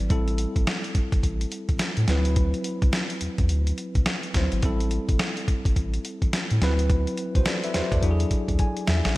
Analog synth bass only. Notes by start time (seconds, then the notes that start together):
0.00 G#1
0.10 A1
0.56 G1
0.95 G1
1.12 G1
1.23 A1
1.69 A1
1.98 A2
2.09 D2
2.82 C2
3.22 E2
3.39 E2
3.50 D2
3.95 C2
4.35 D2
4.53 G#1
4.63 A1
5.09 G1
5.48 G1
5.66 G1
5.76 A1
6.22 A1
6.51 A2
6.62 D2
7.35 C2
7.75 E2
7.92 E2
8.03 E2
8.49 D2
8.88 E2
9.06 A#1